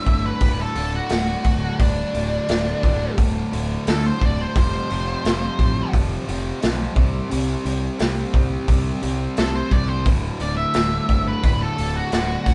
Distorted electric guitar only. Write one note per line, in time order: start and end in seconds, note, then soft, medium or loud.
0.06 0.40 D2 medium
0.06 0.40 A2 medium
0.06 0.41 D3 medium
0.41 0.74 D2 medium
0.41 0.74 A2 loud
0.41 0.75 D3 medium
0.75 1.09 D2 medium
0.75 1.10 A2 medium
0.75 1.10 D3 medium
1.11 1.43 D2 medium
1.11 1.44 A2 medium
1.11 1.44 D3 medium
1.44 1.78 D2 medium
1.44 1.79 A2 medium
1.44 1.79 D3 medium
1.80 2.13 D2 medium
1.80 2.13 A2 medium
1.80 2.14 D3 loud
2.14 2.47 D2 medium
2.14 2.48 A2 medium
2.14 2.48 D3 medium
2.48 2.82 D2 medium
2.48 2.82 A2 medium
2.48 2.83 D3 medium
2.83 3.16 D2 medium
2.83 3.17 A2 medium
2.83 3.17 D3 medium
3.17 3.51 D2 medium
3.17 3.51 A2 medium
3.17 3.52 D3 medium
3.52 3.87 D2 medium
3.52 3.87 A2 medium
3.52 3.88 D3 medium
3.88 4.21 D2 medium
3.88 4.22 A2 medium
3.88 4.22 D3 medium
4.23 4.54 D2 medium
4.23 4.55 A2 medium
4.23 4.55 D3 medium
4.57 4.89 F2 medium
4.57 4.89 C3 medium
4.57 4.90 F3 medium
4.90 5.22 F2 medium
4.90 5.23 C3 medium
4.90 5.23 F3 medium
5.23 5.57 F2 medium
5.23 5.58 C3 medium
5.23 5.59 F3 medium
5.59 5.90 F2 medium
5.59 5.92 C3 medium
5.59 5.92 F3 medium
5.92 6.26 F2 medium
5.92 6.26 C3 loud
5.92 6.27 F3 medium
6.27 6.60 F2 medium
6.27 6.60 C3 medium
6.27 6.61 F3 medium
6.61 6.94 F2 medium
6.61 6.94 C3 medium
6.61 6.95 F3 medium
6.95 7.28 C3 medium
6.95 7.29 G3 medium
6.95 7.30 C4 loud
7.29 7.64 C3 medium
7.29 7.64 G3 medium
7.29 7.65 C4 loud
7.65 7.98 C3 medium
7.65 7.99 G3 medium
7.65 7.99 C4 medium
7.99 8.33 C3 medium
7.99 8.34 G3 medium
7.99 8.34 C4 medium
8.34 8.66 C3 medium
8.34 8.67 G3 medium
8.34 8.68 C4 medium
8.67 9.01 C3 medium
8.67 9.02 G3 medium
8.67 9.03 C4 loud
9.03 9.37 C3 medium
9.03 9.37 G3 medium
9.03 9.38 C4 medium
9.38 9.71 C3 medium
9.38 9.71 G3 medium
9.38 9.72 C4 medium
9.72 10.04 C3 medium
9.72 10.04 G3 medium
9.72 10.05 C4 medium
10.06 10.40 D2 medium
10.06 10.40 A2 medium
10.06 10.41 D3 medium
10.40 10.74 D2 medium
10.40 10.74 A2 medium
10.40 10.75 D3 medium
10.75 11.08 D2 medium
10.75 11.08 A2 medium
10.75 11.10 D3 medium
11.09 11.41 D2 medium
11.09 11.42 A2 medium
11.09 11.43 D3 medium
11.43 11.75 D2 medium
11.43 11.76 A2 medium
11.43 11.77 D3 medium
11.77 12.10 D2 medium
11.77 12.10 A2 medium
11.77 12.11 D3 medium
12.11 12.46 D2 medium
12.11 12.46 A2 medium
12.11 12.46 D3 medium
12.47 12.54 D2 medium
12.47 12.54 A2 medium
12.47 12.54 D3 medium